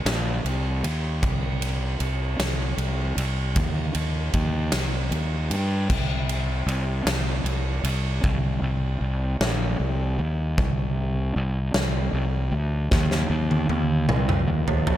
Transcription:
0.05 fingered electric bass A#1, snare, ride
0.45 fingered electric bass C2, ride
0.84 fingered electric bass D#2, ride
1.23 fingered electric bass C2, kick, ride
1.62 ride
2.00 fingered electric bass C2, ride
2.39 fingered electric bass C2, snare, ride
2.77 fingered electric bass C2, ride
3.17 fingered electric bass C2, ride
3.56 fingered electric bass D#2, kick, ride
3.95 fingered electric bass D#2, ride
4.33 fingered electric bass D#2, kick, ride
4.72 fingered electric bass C2, snare, ride
5.11 fingered electric bass D#2, ride
5.50 fingered electric bass G2, ride
5.90 fingered electric bass C2, kick, crash
6.29 ride
6.66 fingered electric bass C2, ride
7.05 fingered electric bass C2, snare, ride
7.44 fingered electric bass C2, ride
7.83 fingered electric bass C2, ride
8.23 fingered electric bass C2, kick
8.62 fingered electric bass C2
9.01 fingered electric bass C2
9.40 fingered electric bass A#1, snare
9.80 fingered electric bass C2
10.19 fingered electric bass D#2
10.58 fingered electric bass C2, kick
11.36 fingered electric bass C2
11.74 fingered electric bass C2, snare
12.13 fingered electric bass C2
12.52 fingered electric bass D2
12.91 fingered electric bass D#2, kick, snare
13.11 snare
13.30 fingered electric bass D#2
13.51 high tom
13.69 fingered electric bass D#2, high tom
14.09 fingered electric bass C2, mid tom
14.29 mid tom
14.48 fingered electric bass D#2
14.68 floor tom
14.87 fingered electric bass A#1, floor tom

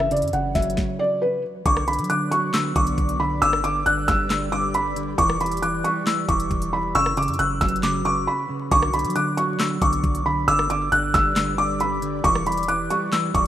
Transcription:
Already playing: 808-style bass F#1, ambient pad F#3 F#4 B4 C#5
0.00 cross-stick
0.11 clean electric guitar C#3, felt piano D5, closed hi-hat
0.17 closed hi-hat
0.22 808-style bass F#2, closed hi-hat
0.28 closed hi-hat
0.33 808-style bass F#1, clean electric guitar C#3, felt piano F#5, closed hi-hat
0.55 808-style bass F#1, clean electric guitar F#3, felt piano E5, kick, snare, closed hi-hat
0.62 closed hi-hat
0.70 closed hi-hat
0.77 kick, snare
0.99 felt piano D5
1.22 felt piano B4
1.65 808-style bass B1, clean electric guitar D3, ambient pad B3 F#4 B4 D5, felt piano C#6, synth bell D6, kick, closed hi-hat
1.77 cross-stick
1.88 clean electric guitar D3, felt piano B5, closed hi-hat
1.93 closed hi-hat
1.99 808-style bass F#3, closed hi-hat
2.04 closed hi-hat
2.10 clean electric guitar D3, felt piano D6, synth bell F#6, closed hi-hat
2.31 clean electric guitar F#3, felt piano C#6, closed hi-hat
2.54 clean electric guitar D3, synth bell E6, snare, clap, closed hi-hat
2.76 808-style bass B1, clean electric guitar D3, felt piano C#6, synth bell D6, kick, closed hi-hat
2.87 closed hi-hat
2.98 808-style bass B1, kick, closed hi-hat
3.09 closed hi-hat
3.20 clean electric guitar D3, felt piano B5
3.42 808-style bass G1, clean electric guitar D3, ambient pad G3 G4 B4, synth bell D6, felt piano E6, closed hi-hat
3.53 cross-stick
3.64 clean electric guitar D3, felt piano D6, closed hi-hat
3.86 808-style bass G1, clean electric guitar D3, felt piano F#6, synth bell F#6, closed hi-hat
4.08 808-style bass G1, clean electric guitar G3, felt piano E6, kick, snare, closed hi-hat
4.30 clean electric guitar D3, synth bell E6, snare, clap, closed hi-hat
4.52 clean electric guitar D3, felt piano D6, synth bell D6
4.74 felt piano B5, closed hi-hat
4.96 clean electric guitar D3, closed hi-hat
5.18 808-style bass E1, clean electric guitar E3, ambient pad E3 E4, felt piano C#6, synth bell D6, kick, closed hi-hat
5.29 cross-stick
5.40 clean electric guitar E3, felt piano B5, closed hi-hat
5.46 closed hi-hat
5.52 closed hi-hat
5.57 closed hi-hat
5.62 clean electric guitar E3, felt piano D6, synth bell F#6, closed hi-hat
5.84 clean electric guitar G3, felt piano C#6, closed hi-hat
6.07 clean electric guitar E3, synth bell E6, snare, clap, closed hi-hat
6.29 808-style bass E1, clean electric guitar E3, felt piano C#6, synth bell D6, kick, closed hi-hat
6.40 closed hi-hat
6.51 808-style bass E1, kick, closed hi-hat
6.62 closed hi-hat
6.73 clean electric guitar E3, felt piano B5
6.95 808-style bass F#1, clean electric guitar C#3, ambient pad F#3 F#4 B4, synth bell C#6, felt piano E6, closed hi-hat
7.06 cross-stick
7.17 clean electric guitar C#3, felt piano D6, closed hi-hat
7.22 closed hi-hat
7.28 808-style bass F#2, closed hi-hat
7.34 closed hi-hat
7.39 808-style bass F#1, clean electric guitar C#3, synth bell E6, felt piano F#6, closed hi-hat
7.61 808-style bass F#1, clean electric guitar F#3, felt piano E6, kick, snare, closed hi-hat
7.68 closed hi-hat
7.76 closed hi-hat
7.83 clean electric guitar C#3, synth bell D6, snare, clap, closed hi-hat
8.05 clean electric guitar C#3, synth bell C#6, felt piano D6
8.27 felt piano B5
8.49 clean electric guitar C#3
8.71 808-style bass B1, clean electric guitar D3, ambient pad B3 D5, felt piano C#6, synth bell D6, kick, closed hi-hat
8.82 cross-stick
8.93 clean electric guitar D3, felt piano B5, closed hi-hat
8.99 closed hi-hat
9.04 808-style bass F#3, closed hi-hat
9.10 closed hi-hat
9.15 clean electric guitar D3, felt piano D6, synth bell F#6, closed hi-hat
9.37 clean electric guitar F#3, felt piano C#6, closed hi-hat
9.60 clean electric guitar D3, synth bell E6, snare, clap, closed hi-hat
9.81 808-style bass B1, clean electric guitar D3, felt piano C#6, synth bell D6, kick, closed hi-hat
9.93 closed hi-hat
10.04 808-style bass B1, kick, closed hi-hat
10.15 closed hi-hat
10.26 clean electric guitar D3, felt piano B5
10.48 808-style bass G1, clean electric guitar D3, ambient pad G3 G4 B4, synth bell D6, felt piano E6, closed hi-hat
10.59 cross-stick
10.70 clean electric guitar D3, felt piano D6, closed hi-hat
10.92 808-style bass G1, clean electric guitar D3, felt piano F#6, synth bell F#6, closed hi-hat
11.14 808-style bass G1, clean electric guitar G3, felt piano E6, kick, snare, closed hi-hat
11.36 clean electric guitar D3, synth bell E6, snare, clap, closed hi-hat
11.58 clean electric guitar D3, felt piano D6, synth bell D6
11.80 felt piano B5, closed hi-hat
12.02 clean electric guitar D3, closed hi-hat
12.24 808-style bass E1, clean electric guitar E3, ambient pad E3 E4 G4, felt piano C#6, synth bell D6, kick, closed hi-hat
12.35 cross-stick
12.46 clean electric guitar E3, felt piano B5, closed hi-hat
12.52 closed hi-hat
12.57 closed hi-hat
12.63 closed hi-hat
12.68 clean electric guitar E3, felt piano D6, synth bell F#6, closed hi-hat
12.90 clean electric guitar G3, felt piano C#6, closed hi-hat
13.12 clean electric guitar E3, synth bell E6, snare, clap, closed hi-hat
13.35 808-style bass E1, clean electric guitar E3, felt piano C#6, synth bell D6, kick, closed hi-hat

